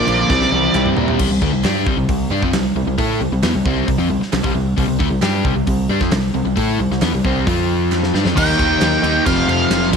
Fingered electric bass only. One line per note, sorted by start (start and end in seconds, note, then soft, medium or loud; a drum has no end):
0.07 0.23 A#1 medium
0.29 0.45 C2 medium
0.52 0.68 C2 medium
0.74 0.90 C2 loud
0.97 1.13 A#2 medium
1.19 1.30 C2 medium
1.30 1.41 C2 medium
1.42 1.52 D2 medium
1.53 1.63 C2 medium
1.64 1.85 G2 medium
1.86 1.96 C2 medium
1.97 2.08 C2 medium
2.09 2.30 C2 medium
2.30 2.41 G2 medium
2.42 2.52 F2 loud
2.52 2.74 C2 medium
2.75 2.86 C2 medium
2.86 2.97 C2 medium
2.98 3.19 A2 loud
3.20 3.30 C2 medium
3.31 3.42 C2 medium
3.42 3.53 E2 medium
3.54 3.65 C2 medium
3.65 3.86 C2 loud
3.88 3.97 C2 medium
3.98 4.09 F2 loud
4.10 4.21 C2 medium
4.21 muted fingered electric bass stroke soft
4.33 4.43 C2 medium
4.44 4.55 C2 medium
4.55 4.76 C2 medium
4.77 4.88 C2 loud
4.89 5.00 C2 medium
5.00 5.10 D2 medium
5.11 5.20 C2 medium
5.21 5.43 G2 medium
5.45 5.55 C2 medium
5.55 5.66 C2 medium
5.67 5.88 C2 medium
5.89 6.00 G2 medium
6.01 6.11 F2 medium
6.12 6.33 C2 medium
6.35 6.45 C2 medium
6.45 6.56 C2 medium
6.57 6.78 A2 loud
6.79 6.90 C2 medium
6.91 7.01 C2 medium
7.02 7.12 E2 medium
7.13 7.24 C2 medium
7.25 7.46 C2 medium
7.47 8.10 F2 medium
8.14 8.24 G2 loud
8.25 8.36 F2 medium
8.37 8.53 D#2 medium
8.59 8.75 D#2 medium
8.81 8.97 D#2 medium
9.03 9.19 D#2 medium
9.26 9.42 F1 medium
9.48 9.64 F2 medium
9.70 9.93 F1 loud
9.93 9.97 A#1 medium